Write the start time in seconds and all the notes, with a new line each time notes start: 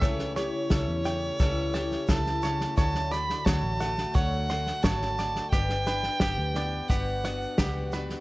Already playing: C#2 C#3 A3 C#5
0.01 C#3 E3 A3 E4 G4 A4 C#5, kick, snare, shaker
0.19 snare
0.36 A3 E4 G4 C#5, snare, shaker
0.70 C#2 E3 G3 A3 E4 G4 A4, kick, snare, shaker
0.88 E2
1.05 C#3 A3 E4 G4 G5, snare, shaker
1.39 C#2 C#3 E3 G3 A3 E4 G4 A4, kick, snare, shaker
1.73 A3 E4 G4 A5, snare, shaker
1.91 snare, shaker
2.07 C#2 E3 A3 E4 G4 A4 A5, kick, snare, shaker
2.25 snare, shaker
2.42 C#3 A3 E4 G4 C#5, snare, shaker
2.60 snare, shaker
2.76 D2 D3 F#3 A3 C#4 F#4 C#5 A5, kick, snare, shaker
2.95 snare
3.11 A3 F#4 D5 B5, snare, shaker
3.29 snare
3.45 D2 F#3 A3 F#4 C#5 A5, kick, snare, shaker
3.63 A1
3.79 A3 F#4 F#5, snare, shaker
3.98 snare
4.14 D2 D3 F#3 A3 F#4 C#5 F#5, kick, snare, shaker
4.32 shaker
4.49 A3 C#4 F#4 C6, snare, shaker
4.66 snare, shaker
4.83 G#1 F#3 A3 C#4 F#4 C#5 A5, kick, snare, shaker
5.02 snare
5.17 A3 F#4 D5, snare, shaker
5.36 snare
5.51 G1 G2 G3 B3 D4 G4 G5, kick, snare, shaker
5.69 snare
5.86 B3 D4 B4, snare, shaker
6.03 snare
6.20 G1 G3 B3 D4 G4, kick, snare, shaker
6.38 D2
6.55 B3 D4 D5, snare
6.88 G1 G3 B3 D4 F#4 G4 F#5, kick, snare, shaker
7.07 shaker
7.24 B3 D4 F#4 F#5, snare, shaker
7.42 shaker
7.58 C#2 G3 B3 D4 F#4 G4, kick, snare, shaker
7.92 B3 D4 F#4 B4, snare, shaker
8.10 snare